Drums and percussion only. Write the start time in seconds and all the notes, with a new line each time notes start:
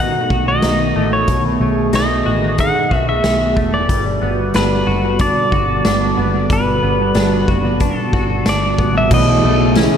0.30 kick
0.62 snare, closed hi-hat
1.28 kick, closed hi-hat
1.93 snare, closed hi-hat
2.58 kick, closed hi-hat
2.91 kick
3.24 snare, closed hi-hat
3.57 kick
3.89 kick, closed hi-hat
4.54 snare, closed hi-hat
5.19 kick, closed hi-hat
5.52 kick
5.85 snare, closed hi-hat
6.50 kick, closed hi-hat
7.14 snare, closed hi-hat
7.48 kick
7.80 kick, closed hi-hat
8.13 kick
8.46 snare, closed hi-hat
8.79 kick
9.11 kick, crash
9.75 snare, ride, tambourine